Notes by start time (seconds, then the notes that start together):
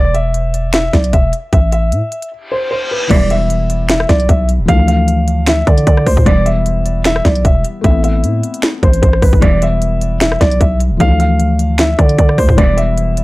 Already playing: E1 D5
0.14 E5, closed hi-hat
0.34 closed hi-hat
0.54 closed hi-hat
0.73 E5, finger snap, snare, closed hi-hat
0.93 B1 D5, kick, snare, closed hi-hat
1.04 closed hi-hat
1.13 E1 E5, kick, closed hi-hat
1.33 closed hi-hat
1.53 A1 E5, kick, closed hi-hat
1.72 E5, closed hi-hat
1.92 A2, closed hi-hat
2.12 closed hi-hat
2.22 closed hi-hat
2.32 reverse cymbal
2.52 C5
2.71 C5
2.91 B4
3.07 E1 B1 G2 E3 G3 D5, kick, closed hi-hat, crash
3.12 B3 E4
3.30 E5, closed hi-hat
3.50 closed hi-hat
3.70 closed hi-hat
3.89 E5, finger snap, snare, closed hi-hat
4.00 cross-stick
4.09 B1 D5, kick, snare, closed hi-hat
4.20 closed hi-hat
4.29 B1 E5, kick, closed hi-hat
4.49 closed hi-hat
4.59 D1
4.66 D2 F3 A3 F5, kick, closed hi-hat
4.70 E3 D4
4.88 F5, closed hi-hat
5.08 closed hi-hat
5.28 closed hi-hat
5.46 E5, finger snap, snare, closed hi-hat
5.67 D3 D5, kick, closed hi-hat
5.78 closed hi-hat
5.87 D3 D5, kick, closed hi-hat
5.97 cross-stick
6.06 D2 C5, kick, cross-stick, open hi-hat
6.17 A2, kick
6.23 E1 B1 G2 E3 G3 D5, kick, closed hi-hat
6.28 B3 E4
6.46 E5, closed hi-hat
6.66 closed hi-hat
6.86 closed hi-hat
7.04 E5, finger snap, snare, closed hi-hat
7.16 cross-stick
7.25 B1 D5, kick, snare, closed hi-hat
7.35 closed hi-hat
7.45 E1 E5, kick, closed hi-hat
7.64 closed hi-hat
7.81 A1 A3 B3 E5, kick, closed hi-hat
7.85 C4 E4
8.04 E5, closed hi-hat
8.24 A2, closed hi-hat
8.43 closed hi-hat
8.54 closed hi-hat
8.62 finger snap, snare, closed hi-hat
8.83 A1 C5, kick, closed hi-hat
8.93 closed hi-hat
9.02 A1 C5, kick, closed hi-hat
9.13 cross-stick
9.22 A1 B4, kick, cross-stick, open hi-hat
9.33 A1, kick
9.39 E1 B1 G2 E3 G3 D5, kick, closed hi-hat
9.43 B3 E4
9.62 E5, closed hi-hat
9.82 closed hi-hat
10.01 closed hi-hat
10.20 E5, finger snap, snare, closed hi-hat
10.32 cross-stick
10.41 B1 D5, kick, snare, closed hi-hat
10.51 closed hi-hat
10.61 B1 E5, kick, closed hi-hat
10.80 closed hi-hat
10.91 D1
10.97 D2 F3 A3 F5, kick, closed hi-hat
11.01 E3 D4
11.20 F5, closed hi-hat
11.40 closed hi-hat
11.59 closed hi-hat
11.78 E5, finger snap, snare, closed hi-hat
11.99 D3 D5, kick, closed hi-hat
12.09 closed hi-hat
12.18 D3 D5, kick, closed hi-hat
12.29 cross-stick
12.38 D2 C5, kick, cross-stick, open hi-hat
12.49 A2, kick
12.55 E1 B1 G2 E3 G3 D5, kick, closed hi-hat
12.59 B3 E4
12.77 E5, closed hi-hat
12.98 closed hi-hat
13.17 closed hi-hat